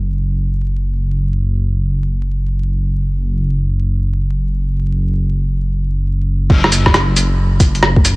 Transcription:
0, 0, Header, 1, 3, 480
1, 0, Start_track
1, 0, Tempo, 500000
1, 7836, End_track
2, 0, Start_track
2, 0, Title_t, "Detuned saw bass"
2, 0, Program_c, 0, 39
2, 0, Note_on_c, 0, 30, 82
2, 6224, Note_off_c, 0, 30, 0
2, 6239, Note_on_c, 0, 30, 92
2, 7836, Note_off_c, 0, 30, 0
2, 7836, End_track
3, 0, Start_track
3, 0, Title_t, "Drums"
3, 6239, Note_on_c, 9, 36, 120
3, 6240, Note_on_c, 9, 49, 101
3, 6335, Note_off_c, 9, 36, 0
3, 6336, Note_off_c, 9, 49, 0
3, 6375, Note_on_c, 9, 37, 62
3, 6452, Note_on_c, 9, 42, 60
3, 6452, Note_on_c, 9, 69, 72
3, 6471, Note_off_c, 9, 37, 0
3, 6548, Note_off_c, 9, 42, 0
3, 6548, Note_off_c, 9, 69, 0
3, 6586, Note_on_c, 9, 37, 55
3, 6587, Note_on_c, 9, 36, 62
3, 6664, Note_off_c, 9, 37, 0
3, 6664, Note_on_c, 9, 37, 106
3, 6664, Note_on_c, 9, 42, 32
3, 6683, Note_off_c, 9, 36, 0
3, 6760, Note_off_c, 9, 37, 0
3, 6760, Note_off_c, 9, 42, 0
3, 6878, Note_on_c, 9, 42, 57
3, 6878, Note_on_c, 9, 69, 72
3, 6974, Note_off_c, 9, 42, 0
3, 6974, Note_off_c, 9, 69, 0
3, 7296, Note_on_c, 9, 36, 110
3, 7296, Note_on_c, 9, 42, 62
3, 7296, Note_on_c, 9, 69, 75
3, 7392, Note_off_c, 9, 36, 0
3, 7392, Note_off_c, 9, 42, 0
3, 7392, Note_off_c, 9, 69, 0
3, 7439, Note_on_c, 9, 42, 33
3, 7513, Note_on_c, 9, 37, 105
3, 7535, Note_off_c, 9, 42, 0
3, 7609, Note_off_c, 9, 37, 0
3, 7645, Note_on_c, 9, 36, 105
3, 7726, Note_on_c, 9, 42, 61
3, 7726, Note_on_c, 9, 69, 77
3, 7741, Note_off_c, 9, 36, 0
3, 7822, Note_off_c, 9, 42, 0
3, 7822, Note_off_c, 9, 69, 0
3, 7836, End_track
0, 0, End_of_file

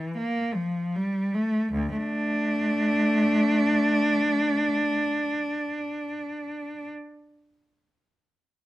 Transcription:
0, 0, Header, 1, 2, 480
1, 0, Start_track
1, 0, Key_signature, -1, "minor"
1, 0, Tempo, 1558442
1, 535, Time_signature, 3, 2, 24, 8
1, 535, Tempo, 1500000
1, 2748, End_track
2, 0, Start_track
2, 0, Title_t, "Cello"
2, 0, Program_c, 0, 42
2, 0, Note_on_c, 0, 52, 45
2, 53, Note_off_c, 0, 52, 0
2, 53, Note_on_c, 0, 58, 53
2, 168, Note_off_c, 0, 58, 0
2, 168, Note_on_c, 0, 53, 42
2, 292, Note_off_c, 0, 53, 0
2, 295, Note_on_c, 0, 55, 46
2, 414, Note_on_c, 0, 57, 45
2, 417, Note_off_c, 0, 55, 0
2, 533, Note_on_c, 0, 38, 55
2, 534, Note_off_c, 0, 57, 0
2, 609, Note_on_c, 0, 57, 46
2, 609, Note_on_c, 0, 62, 57
2, 612, Note_off_c, 0, 38, 0
2, 1551, Note_off_c, 0, 57, 0
2, 2179, Note_off_c, 0, 62, 0
2, 2748, End_track
0, 0, End_of_file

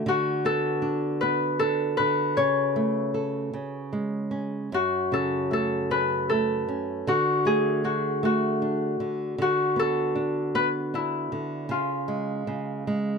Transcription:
0, 0, Header, 1, 3, 480
1, 0, Start_track
1, 0, Tempo, 772201
1, 35, Time_signature, 6, 3, 24, 8
1, 1955, Tempo, 786370
1, 3875, Tempo, 773196
1, 8154, End_track
2, 0, Start_track
2, 0, Title_t, "Harp"
2, 0, Program_c, 0, 46
2, 0, Note_on_c, 0, 68, 75
2, 52, Note_on_c, 0, 66, 81
2, 265, Note_off_c, 0, 68, 0
2, 284, Note_on_c, 0, 69, 81
2, 751, Note_on_c, 0, 71, 80
2, 989, Note_off_c, 0, 69, 0
2, 991, Note_on_c, 0, 69, 84
2, 1222, Note_off_c, 0, 71, 0
2, 1225, Note_on_c, 0, 71, 90
2, 1472, Note_on_c, 0, 73, 80
2, 1566, Note_off_c, 0, 66, 0
2, 2349, Note_off_c, 0, 69, 0
2, 2488, Note_off_c, 0, 71, 0
2, 2653, Note_off_c, 0, 73, 0
2, 2930, Note_on_c, 0, 66, 81
2, 3170, Note_on_c, 0, 69, 77
2, 3410, Note_off_c, 0, 69, 0
2, 3412, Note_on_c, 0, 69, 81
2, 3643, Note_on_c, 0, 71, 85
2, 3875, Note_off_c, 0, 69, 0
2, 3878, Note_on_c, 0, 69, 81
2, 4364, Note_off_c, 0, 66, 0
2, 4367, Note_on_c, 0, 66, 77
2, 4604, Note_on_c, 0, 68, 79
2, 4642, Note_off_c, 0, 69, 0
2, 4838, Note_off_c, 0, 66, 0
2, 4841, Note_on_c, 0, 66, 72
2, 4912, Note_off_c, 0, 71, 0
2, 5089, Note_off_c, 0, 66, 0
2, 5091, Note_on_c, 0, 66, 80
2, 5813, Note_off_c, 0, 66, 0
2, 5816, Note_on_c, 0, 66, 79
2, 6016, Note_off_c, 0, 68, 0
2, 6050, Note_on_c, 0, 69, 81
2, 6520, Note_on_c, 0, 71, 89
2, 6583, Note_off_c, 0, 71, 0
2, 6767, Note_on_c, 0, 64, 71
2, 7239, Note_on_c, 0, 65, 66
2, 7277, Note_off_c, 0, 64, 0
2, 7277, Note_off_c, 0, 66, 0
2, 7413, Note_off_c, 0, 69, 0
2, 8154, Note_off_c, 0, 65, 0
2, 8154, End_track
3, 0, Start_track
3, 0, Title_t, "Nylon-string guitar"
3, 0, Program_c, 1, 24
3, 38, Note_on_c, 1, 50, 63
3, 279, Note_on_c, 1, 59, 50
3, 510, Note_on_c, 1, 62, 45
3, 754, Note_off_c, 1, 59, 0
3, 762, Note_on_c, 1, 59, 49
3, 988, Note_off_c, 1, 62, 0
3, 996, Note_on_c, 1, 62, 46
3, 1232, Note_off_c, 1, 50, 0
3, 1240, Note_on_c, 1, 50, 44
3, 1455, Note_off_c, 1, 59, 0
3, 1460, Note_off_c, 1, 62, 0
3, 1469, Note_off_c, 1, 50, 0
3, 1475, Note_on_c, 1, 49, 63
3, 1715, Note_on_c, 1, 57, 50
3, 1954, Note_on_c, 1, 69, 37
3, 2175, Note_off_c, 1, 49, 0
3, 2182, Note_off_c, 1, 57, 0
3, 2187, Note_off_c, 1, 69, 0
3, 2193, Note_on_c, 1, 49, 54
3, 2432, Note_on_c, 1, 56, 43
3, 2666, Note_on_c, 1, 61, 41
3, 2896, Note_off_c, 1, 49, 0
3, 2903, Note_off_c, 1, 56, 0
3, 2906, Note_off_c, 1, 61, 0
3, 2918, Note_on_c, 1, 42, 59
3, 3159, Note_on_c, 1, 49, 44
3, 3398, Note_on_c, 1, 57, 40
3, 3640, Note_on_c, 1, 61, 47
3, 3881, Note_off_c, 1, 57, 0
3, 3889, Note_on_c, 1, 57, 43
3, 4092, Note_off_c, 1, 49, 0
3, 4113, Note_off_c, 1, 61, 0
3, 4120, Note_on_c, 1, 61, 44
3, 4333, Note_off_c, 1, 42, 0
3, 4350, Note_off_c, 1, 57, 0
3, 4353, Note_off_c, 1, 61, 0
3, 4361, Note_on_c, 1, 50, 66
3, 4597, Note_on_c, 1, 57, 48
3, 4839, Note_on_c, 1, 62, 43
3, 5071, Note_off_c, 1, 57, 0
3, 5079, Note_on_c, 1, 57, 47
3, 5313, Note_off_c, 1, 62, 0
3, 5320, Note_on_c, 1, 62, 47
3, 5551, Note_off_c, 1, 50, 0
3, 5558, Note_on_c, 1, 50, 49
3, 5776, Note_off_c, 1, 57, 0
3, 5784, Note_off_c, 1, 62, 0
3, 5788, Note_off_c, 1, 50, 0
3, 5795, Note_on_c, 1, 50, 65
3, 6030, Note_on_c, 1, 59, 48
3, 6274, Note_on_c, 1, 62, 43
3, 6510, Note_off_c, 1, 59, 0
3, 6518, Note_on_c, 1, 59, 47
3, 6753, Note_off_c, 1, 62, 0
3, 6760, Note_on_c, 1, 62, 43
3, 6990, Note_off_c, 1, 50, 0
3, 6998, Note_on_c, 1, 50, 47
3, 7209, Note_off_c, 1, 59, 0
3, 7218, Note_off_c, 1, 62, 0
3, 7224, Note_off_c, 1, 50, 0
3, 7227, Note_on_c, 1, 49, 56
3, 7469, Note_on_c, 1, 56, 45
3, 7705, Note_off_c, 1, 49, 0
3, 7713, Note_on_c, 1, 49, 47
3, 7954, Note_off_c, 1, 56, 0
3, 7961, Note_on_c, 1, 56, 51
3, 8154, Note_off_c, 1, 49, 0
3, 8154, Note_off_c, 1, 56, 0
3, 8154, End_track
0, 0, End_of_file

